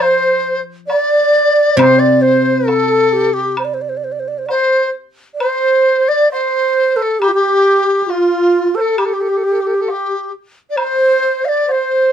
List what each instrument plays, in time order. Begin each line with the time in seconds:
Already playing: guzheng F3, xiao C5
0.02 dizi C5
0.87 xiao D5, dizi D5, high woodblock, low woodblock
1.76 guzheng C3, xiao C5, dizi C5, high woodblock
1.98 xiao D5, dizi D5
2.21 xiao C5, dizi C5
2.61 xiao C5
2.67 dizi A4, xiao A4, high woodblock, low woodblock
3.13 xiao G4
3.34 dizi G4, xiao G4
3.57 xiao C5, high woodblock
3.65 xiao D5
3.74 xiao C5
3.81 xiao D5
3.89 xiao C5
3.97 xiao D5
4.04 xiao C5
4.12 xiao D5
4.20 xiao C5
4.28 xiao D5
4.38 xiao C5
4.46 dizi C5, xiao D5, high woodblock, low woodblock
4.53 xiao C5
5.34 xiao D5
5.40 dizi C5, xiao C5, high woodblock
6.08 dizi D5, xiao D5
6.32 xiao C5, dizi C5, low woodblock
6.96 xiao A4, dizi C5
7.02 dizi A4
7.19 xiao G4, dizi G4, high woodblock
7.28 xiao F4 G4
7.35 dizi G4
8.02 xiao G4
8.07 xiao F4, dizi F4, low woodblock
8.75 xiao A4, dizi C5
8.81 dizi A4
8.93 xiao A4
8.97 xiao G4, dizi G4, high woodblock
9.05 dizi A4
9.14 dizi G4
9.21 dizi A4
9.29 dizi G4
9.37 dizi A4
9.44 dizi G4
9.52 dizi A4
9.61 dizi G4
9.67 dizi A4
9.75 dizi G4
9.81 dizi A4
9.88 dizi G4, low woodblock
10.70 xiao D5, dizi D5
10.76 xiao C5, dizi C5, high woodblock
11.45 xiao D5, dizi D5 F5
11.67 xiao C5, dizi D5, low woodblock
11.72 dizi C5